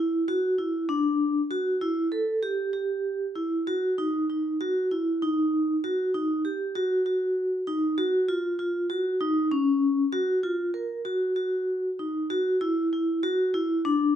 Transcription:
Already playing: E4
0.28 F#4
0.58 E4
0.89 D4
1.51 F#4
1.81 E4
2.12 A4
2.43 G4
2.73 G4
3.36 E4
3.67 F#4
3.98 D#4
4.30 D#4
4.61 F#4
4.91 E4
5.22 D#4
5.84 F#4
6.14 D#4
6.45 G4
6.75 F#4
7.06 F#4
7.67 D#4
7.98 F#4
8.29 F4
8.59 F4
8.90 F#4
9.21 D#4
9.52 C#4
10.13 F#4
10.43 F4
10.74 A#4
11.05 F#4
11.36 F#4
11.99 D#4
12.30 F#4
12.61 E4
12.93 E4
13.23 F#4
13.54 E4
13.85 D4

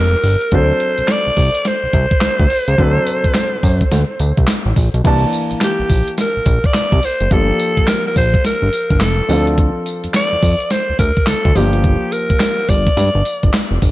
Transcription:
Already playing: F1 F3 A#3 D4 G4 A#4
0.23 G1, open hi-hat
0.41 closed hi-hat
0.52 D2 F#3 C4 D4 A4 C5, kick, closed hi-hat
0.80 closed hi-hat
0.98 C2, closed hi-hat
1.08 snare, clap, closed hi-hat
1.12 D5
1.27 C2
1.37 C2, kick, open hi-hat
1.55 closed hi-hat
1.65 C5, snare, closed hi-hat
1.83 C2
1.93 C2, kick, closed hi-hat
2.11 kick, closed hi-hat
2.21 D2, snare, clap, closed hi-hat
2.39 D2, kick
2.50 open hi-hat
2.68 C#2, closed hi-hat
2.78 D2 F#3 C4 D4 A4, kick, closed hi-hat
3.07 closed hi-hat, tambourine
3.24 F#2, kick, closed hi-hat
3.34 snare, clap, closed hi-hat, tambourine
3.63 F#2, kick, open hi-hat, tambourine
3.81 kick, closed hi-hat
3.91 D2, snare, closed hi-hat, tambourine
4.20 D2, closed hi-hat, tambourine
4.37 C2, kick, closed hi-hat
4.47 snare, clap, closed hi-hat, tambourine
4.66 A1
4.76 A#1, kick, open hi-hat, tambourine
4.94 B1, closed hi-hat
5.04 C2 E3 A#3 D4 A5, kick, closed hi-hat, crash
5.33 closed hi-hat, tambourine
5.51 A#1, closed hi-hat
5.61 G4, snare, clap, closed hi-hat, tambourine
5.79 A#1
5.90 A#1, kick, open hi-hat, tambourine
6.08 closed hi-hat
6.18 A#4, snare, closed hi-hat, tambourine
6.36 A#1
6.46 A#1, kick, closed hi-hat, tambourine
6.64 D5, kick, closed hi-hat
6.74 C2, snare, clap, closed hi-hat, tambourine
6.92 C2, kick
7.03 C5, open hi-hat, tambourine
7.21 F#1, closed hi-hat
7.31 G1 F3 A#3 D4 G4 A4, kick, closed hi-hat
7.60 closed hi-hat, tambourine
7.77 A#1, kick, closed hi-hat
7.87 A#4, snare, clap, closed hi-hat, tambourine
8.07 A#4
8.16 A#1 C5, kick, open hi-hat, tambourine
8.34 kick, closed hi-hat
8.44 A#4, snare, closed hi-hat, tambourine
8.62 G1
8.73 closed hi-hat, tambourine
8.90 G1, kick, closed hi-hat
9.00 F1 A4, snare, clap, closed hi-hat, tambourine
9.28 D2 F3 C4 D4 A4, open hi-hat, tambourine
9.47 closed hi-hat
9.58 kick, closed hi-hat
9.86 closed hi-hat, tambourine
10.04 F2, closed hi-hat
10.14 D5, snare, clap, closed hi-hat, tambourine
10.32 F2
10.43 F2, kick, open hi-hat, tambourine
10.60 closed hi-hat
10.70 C5, snare, closed hi-hat, tambourine
10.89 D2
10.99 D2 A#4, kick, closed hi-hat, tambourine
11.17 kick, closed hi-hat
11.26 D2 A4, snare, clap, closed hi-hat, tambourine
11.45 D2, kick
11.55 G1 F3 A#3 D4 G4, open hi-hat, tambourine
11.73 closed hi-hat
11.84 kick, closed hi-hat
12.12 A#4, closed hi-hat, tambourine
12.30 G1, kick, closed hi-hat
12.40 snare, clap, closed hi-hat, tambourine
12.69 G1 D5, kick, open hi-hat, tambourine
12.87 kick, closed hi-hat
12.97 G2, snare, closed hi-hat, tambourine
13.15 G1
13.25 closed hi-hat, tambourine
13.43 G1, kick, closed hi-hat
13.53 snare, clap, closed hi-hat, tambourine
13.71 F1
13.82 G1, kick, open hi-hat, tambourine

